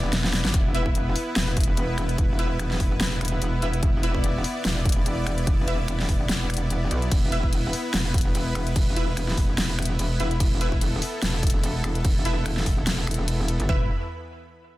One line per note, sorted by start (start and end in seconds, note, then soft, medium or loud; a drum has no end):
0.00 0.43 E1 loud
0.00 13.65 B3 medium
0.00 13.65 E4 medium
0.00 0.53 D5 medium
0.13 snare medium
0.13 closed hi-hat medium
0.24 snare medium
0.33 snare loud
0.33 closed hi-hat medium
0.45 0.52 G1 loud
0.45 snare medium
0.45 closed hi-hat soft
0.54 1.14 E1 loud
0.54 3.82 B4 medium
0.54 kick loud
0.54 closed hi-hat medium
0.75 0.81 E4 loud
0.75 0.81 B4 medium
0.75 0.81 E5 loud
0.75 closed hi-hat medium
0.86 kick medium
0.95 closed hi-hat medium
1.16 open hi-hat loud
1.36 1.76 E1 loud
1.36 snare loud
1.36 closed hi-hat medium
1.57 kick loud
1.57 closed hi-hat medium
1.60 closed hi-hat medium
1.64 closed hi-hat medium
1.77 2.17 E1 loud
1.77 closed hi-hat medium
1.98 finger snap medium
1.98 closed hi-hat medium
2.09 closed hi-hat soft
2.18 2.79 E1 loud
2.18 kick loud
2.18 closed hi-hat medium
2.39 2.46 E4 loud
2.39 2.46 B4 medium
2.39 2.46 E5 loud
2.39 closed hi-hat medium
2.59 finger snap medium
2.59 closed hi-hat medium
2.71 snare soft
2.80 2.99 E1 loud
2.80 kick medium
2.80 open hi-hat medium
3.01 3.40 E1 loud
3.01 snare loud
3.01 closed hi-hat medium
3.21 finger snap medium
3.21 closed hi-hat medium
3.25 closed hi-hat medium
3.28 closed hi-hat medium
3.42 3.81 E1 loud
3.42 closed hi-hat medium
3.62 3.69 E4 medium
3.62 3.69 B4 medium
3.62 3.69 E5 medium
3.62 closed hi-hat medium
3.73 closed hi-hat soft
3.83 4.43 E1 loud
3.83 7.11 D5 medium
3.83 kick loud
3.83 closed hi-hat medium
4.03 4.10 E4 medium
4.03 4.10 B4 medium
4.03 4.10 E5 loud
4.03 closed hi-hat medium
4.15 kick medium
4.24 closed hi-hat medium
4.44 open hi-hat medium
4.65 5.05 E1 loud
4.65 snare loud
4.65 closed hi-hat medium
4.85 kick loud
4.85 closed hi-hat medium
4.89 closed hi-hat medium
4.92 closed hi-hat medium
5.06 5.46 E1 loud
5.06 closed hi-hat medium
5.27 finger snap medium
5.27 closed hi-hat medium
5.38 closed hi-hat soft
5.47 6.07 E1 loud
5.47 kick loud
5.47 closed hi-hat medium
5.68 5.75 E4 loud
5.68 5.75 B4 medium
5.68 5.75 E5 loud
5.68 closed hi-hat medium
5.88 finger snap medium
5.88 closed hi-hat medium
6.00 snare soft
6.09 6.28 E1 loud
6.09 kick medium
6.09 open hi-hat medium
6.29 6.89 E1 loud
6.29 snare loud
6.29 closed hi-hat medium
6.50 finger snap medium
6.50 closed hi-hat medium
6.54 closed hi-hat medium
6.57 closed hi-hat medium
6.70 closed hi-hat medium
6.91 7.10 B1 loud
6.91 closed hi-hat medium
7.02 closed hi-hat soft
7.12 7.72 E1 loud
7.12 10.39 B4 medium
7.12 kick loud
7.12 closed hi-hat medium
7.12 crash medium
7.32 7.39 E4 medium
7.32 7.39 B4 medium
7.32 7.39 E5 loud
7.32 closed hi-hat medium
7.43 kick medium
7.53 closed hi-hat medium
7.53 crash soft
7.73 open hi-hat medium
7.94 8.33 E1 loud
7.94 snare loud
7.94 closed hi-hat medium
7.94 crash medium
8.14 kick loud
8.14 closed hi-hat soft
8.18 closed hi-hat medium
8.21 closed hi-hat medium
8.35 8.74 E1 loud
8.35 closed hi-hat medium
8.35 crash soft
8.55 finger snap medium
8.55 closed hi-hat soft
8.67 closed hi-hat soft
8.76 9.36 E1 loud
8.76 kick loud
8.76 closed hi-hat medium
8.76 crash medium
8.96 9.03 E4 loud
8.96 9.03 B4 medium
8.96 9.03 E5 loud
8.96 closed hi-hat medium
9.17 finger snap medium
9.17 closed hi-hat medium
9.17 crash soft
9.28 snare soft
9.38 9.57 E1 loud
9.38 kick medium
9.38 open hi-hat medium
9.58 9.98 E1 loud
9.58 snare loud
9.58 closed hi-hat medium
9.58 crash medium
9.79 finger snap medium
9.79 closed hi-hat soft
9.82 closed hi-hat medium
9.85 closed hi-hat medium
9.99 10.39 E1 loud
9.99 closed hi-hat medium
9.99 crash soft
10.20 10.27 E4 medium
10.20 10.27 B4 medium
10.20 10.27 E5 medium
10.20 closed hi-hat soft
10.31 closed hi-hat soft
10.40 11.00 E1 loud
10.40 13.68 A4 medium
10.40 kick loud
10.40 closed hi-hat medium
10.40 crash medium
10.61 10.68 E4 medium
10.61 10.68 B4 medium
10.61 10.68 E5 loud
10.61 closed hi-hat medium
10.72 kick medium
10.81 closed hi-hat medium
10.81 crash soft
11.02 open hi-hat medium
11.22 11.62 E1 loud
11.22 snare loud
11.22 closed hi-hat medium
11.22 crash medium
11.43 kick loud
11.43 closed hi-hat soft
11.47 closed hi-hat medium
11.50 closed hi-hat medium
11.63 12.03 E1 loud
11.63 closed hi-hat medium
11.63 crash soft
11.84 finger snap medium
11.84 closed hi-hat medium
11.95 closed hi-hat soft
12.05 12.65 E1 loud
12.05 kick loud
12.05 closed hi-hat medium
12.05 crash medium
12.25 12.32 E4 loud
12.25 12.32 B4 medium
12.25 12.32 E5 loud
12.25 closed hi-hat medium
12.46 finger snap medium
12.46 closed hi-hat medium
12.46 crash soft
12.57 snare soft
12.66 12.85 E1 loud
12.66 kick medium
12.66 open hi-hat loud
12.87 13.17 E1 loud
12.87 snare loud
12.87 closed hi-hat medium
12.87 crash medium
13.07 finger snap medium
13.07 closed hi-hat medium
13.11 closed hi-hat medium
13.14 closed hi-hat medium
13.19 13.58 E1 loud
13.28 closed hi-hat medium
13.28 crash soft
13.48 closed hi-hat medium
13.60 13.68 G1 loud
13.60 closed hi-hat soft
13.69 13.88 E1 loud
13.69 13.88 E3 medium
13.69 13.88 B3 medium
13.69 13.85 E4 medium
13.69 13.88 E4 medium
13.69 13.85 B4 medium
13.69 13.88 B4 medium
13.69 13.85 E5 loud
13.69 13.88 B5 medium
13.69 kick loud
13.69 floor tom loud